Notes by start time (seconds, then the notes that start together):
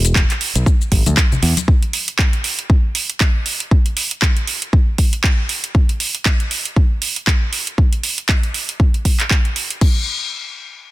Already playing: E1
0.05 closed hi-hat, shaker
0.15 kick, clap, shaker
0.30 clap, closed hi-hat, shaker
0.41 open hi-hat
0.55 B1, closed hi-hat, shaker
0.66 kick, shaker
0.81 shaker
0.92 G#1, kick, open hi-hat, high conga
1.06 D2, closed hi-hat, high conga, shaker
1.17 kick, clap, shaker
1.32 low conga, shaker
1.43 E2, open hi-hat
1.57 closed hi-hat, high conga, shaker
1.68 kick
1.82 closed hi-hat
1.93 open hi-hat
2.08 closed hi-hat
2.19 kick, clap
2.33 closed hi-hat
2.44 open hi-hat
2.59 closed hi-hat
2.70 kick
2.95 open hi-hat
3.10 closed hi-hat
3.21 kick, clap
3.46 open hi-hat
3.60 closed hi-hat
3.71 kick
3.86 closed hi-hat
3.97 open hi-hat
4.11 closed hi-hat
4.22 kick, clap
4.37 closed hi-hat
4.47 open hi-hat
4.62 closed hi-hat
4.73 kick
4.98 kick, open hi-hat
5.13 closed hi-hat
5.24 kick, clap
5.49 open hi-hat
5.64 closed hi-hat
5.75 kick
5.89 closed hi-hat
6.00 open hi-hat
6.15 closed hi-hat
6.26 kick, clap
6.40 closed hi-hat
6.51 open hi-hat
6.65 closed hi-hat
6.76 kick
7.02 open hi-hat
7.16 closed hi-hat
7.27 kick, clap
7.53 open hi-hat
7.67 closed hi-hat
7.78 kick
7.93 closed hi-hat
8.03 open hi-hat
8.18 closed hi-hat
8.29 kick, clap
8.43 closed hi-hat
8.54 open hi-hat
8.69 closed hi-hat
8.80 kick
8.94 closed hi-hat
9.05 kick, open hi-hat
9.20 clap, closed hi-hat
9.31 kick, clap
9.45 closed hi-hat
9.56 open hi-hat
9.70 closed hi-hat
9.81 kick, crash